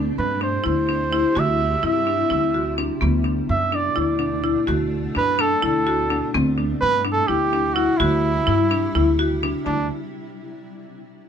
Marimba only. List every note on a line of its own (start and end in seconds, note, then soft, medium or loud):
0.00 0.21 D4 medium
0.41 0.55 D4 medium
0.64 0.77 E4 medium
0.89 1.02 D4 medium
1.12 1.26 E4 medium
1.35 1.62 F#4 medium
1.83 1.96 E4 medium
2.07 2.20 D4 medium
2.30 2.44 E4 medium
2.54 2.68 F#4 medium
2.78 2.91 D4 medium
3.01 3.15 B3 medium
3.24 3.51 D4 medium
3.72 3.86 D4 medium
3.96 4.09 E4 medium
4.19 4.33 D4 medium
4.44 4.57 E4 medium
4.67 4.94 F#4 medium
5.15 5.28 D4 medium
5.39 5.52 D4 medium
5.62 5.76 E4 medium
5.87 6.00 F#4 medium
6.10 6.24 D4 medium
6.34 6.48 C4 medium
6.58 6.84 D4 medium
7.05 7.18 D4 medium
7.28 7.42 E4 medium
7.53 7.66 D4 medium
7.76 7.89 E4 medium
8.00 8.26 F#4 loud
8.47 8.60 E4 medium
8.71 8.84 D4 medium
8.95 9.08 E4 medium
9.19 9.32 F#4 medium
9.43 9.56 D4 medium
9.66 9.88 D4 medium